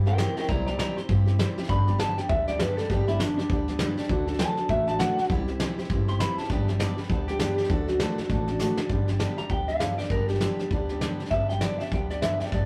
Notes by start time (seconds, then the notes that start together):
Already playing: G2
0.06 C4 E4 G4 A#4 G5, snare
0.18 C3 G3 C4 E4 G4 A#4 G5, snare, hi-hat pedal
0.36 C4 E4 G4 A#4 G5, muted upright bass stroke, snare
0.43 snare
0.48 C2 C3 G3 C4 E4 G4 D5 A#5, kick, snare
0.67 C4 E4 G4 D5 A#5, snare
0.78 C3 G3 C4 E4 G4 D5 A#5, snare, hi-hat pedal
0.96 C4 E4 G4 C6, muted upright bass stroke, snare
1.09 G2 G3 C4 E4 G4, kick, snare
1.26 C4 E4 G4, snare
1.39 C3 G3 C4 E4 G4, snare, hi-hat pedal
1.58 C4 E4 G4, muted upright bass stroke, snare
1.63 snare
1.68 G1 G2 D3 G3 B3 D4 G4 B5, kick, snare
1.87 G3 B3 D4 G4, snare
1.98 G2 D3 G3 B3 D4 G4 A5, snare, hi-hat pedal
2.18 G3 B3 D4 G4 G5, muted upright bass stroke, snare
2.29 D2 G3 B3 D4 G4 E5, kick, snare
2.47 G3 B3 D4 G4 D5, snare
2.59 G2 D3 G3 B3 D4 G4 B4, snare, hi-hat pedal
2.77 G3 B3 D4 G4 A4, muted upright bass stroke, snare
2.84 snare
2.89 G1 G2 D3 G3 B3 D4 G4, kick, snare
3.07 G3 B3 D4 E4 G4, snare
3.19 G2 D3 G3 B3 D4 G4, snare, hi-hat pedal
3.38 G3 B3 D4 G4, muted upright bass stroke, snare
3.50 D2 G3 B3 D4 G4, kick, snare
3.68 G3 B3 D4 G4, snare
3.79 G2 D3 G3 B3 D4 G4, snare, hi-hat pedal
3.97 G3 B3 D4 G4, muted upright bass stroke, snare
4.03 snare
4.09 D2 D3 A3 D4 F#4 A4, kick, snare
4.27 D4 F#4 A4, snare
4.33 snare
4.39 D3 A3 D4 F#4 A4 A5, snare, hi-hat pedal
4.57 D4 F#4 A4, muted upright bass stroke, snare
4.68 A1 A3 D4 F#4 A4 E5, kick, snare
4.87 D4 F#4 A4 A5, snare
4.99 D3 A3 D4 F#4 A4 F#5, snare, hi-hat pedal
5.18 D4 F#4 A4, muted upright bass stroke, snare
5.24 snare
5.30 C2 C3 G3 C4 E4 G4, kick, snare
5.48 C4 E4 G4, snare
5.60 C3 G3 C4 E4 G4, snare, hi-hat pedal
5.78 C4 E4 G4, muted upright bass stroke, snare
5.84 snare
5.90 G1 G3 C4 E4 G4, kick, snare
6.08 C4 E4 G4 C6, snare
6.20 C3 G3 C4 E4 G4 B5, snare, hi-hat pedal
6.37 C4 E4 G4 A5, muted upright bass stroke, snare
6.44 snare
6.49 G1 G2 D3 G3 B3 D4 G4 G5, kick, snare
6.68 G3 B3 D4 G4 E5, snare
6.79 G2 D3 G3 B3 D4 G4 D5, snare, hi-hat pedal
6.97 G3 B3 D4 G4 B4, muted upright bass stroke, snare
7.04 snare
7.09 D2 G3 B3 D4 G4 A4, kick, snare
7.28 G3 B3 D4 G4, snare
7.39 G2 D3 G3 B3 D4 G4, snare, hi-hat pedal
7.58 G3 B3 D4 G4, muted upright bass stroke, snare
7.64 snare
7.69 D2 D3 A3 D4 F#4 A4, kick, snare
7.88 D4 F#4 A4, snare
8.00 D3 A3 D4 F#4 A4, snare, hi-hat pedal
8.18 D4 F#4 A4, muted upright bass stroke, snare
8.24 snare
8.29 A1 A3 D4 F#4 A4, kick, snare
8.47 D4 F#4 A4, snare
8.59 D3 A3 D4 F#4 A4, snare, hi-hat pedal
8.77 D4 F#4 A4, muted upright bass stroke, snare
8.90 G1 G2 D3 G3 B3 D4 G4, kick, snare
9.08 G3 B3 D4 G4, snare
9.19 G2 D3 G3 B3 D4 G4, snare, hi-hat pedal
9.37 G3 B3 D4 G4 A#5, muted upright bass stroke, snare
9.49 D2 G3 B3 D4 G4 G5, kick, snare
9.68 G3 B3 D4 G4 F5, snare
9.79 G2 D3 G3 B3 D4 G4, snare, hi-hat pedal
9.98 G3 B3 D4 G4 D5, muted upright bass stroke, snare
10.04 snare
10.10 G1 G2 D3 G3 B3 D4 G4 A#4, kick, snare
10.27 G3 B3 D4 G4, snare
10.34 snare
10.41 G2 D3 G3 B3 D4 G4, snare, hi-hat pedal
10.59 G3 B3 D4 G4, muted upright bass stroke, snare
10.71 D2 G3 B3 D4 G4, kick, snare
10.89 G3 B3 D4 G4, snare
11.01 G2 D3 G3 B3 D4 G4, snare, hi-hat pedal
11.20 G3 B3 D4 G4, muted upright bass stroke, snare
11.26 snare
11.31 G1 G2 D3 G3 B3 D4 G4 E5, kick, snare
11.49 G3 B3 D4 G4 G5, snare
11.61 G2 D3 G3 B3 D4 G4 D5, snare, hi-hat pedal
11.78 B3 D4 G4 E5, muted upright bass stroke, snare
11.82 G3, snare
11.91 D2 G3 B3 D4 G4 G5, kick, snare
12.10 G3 B3 D4 G4 D5, snare
12.22 G2 D3 G3 B3 D4 G4 E5, snare, hi-hat pedal
12.40 G3 B3 D4 G4 G5, muted upright bass stroke, snare
12.46 snare
12.52 G1 G2 D3 G3 B3 D4 G4 D5, kick, snare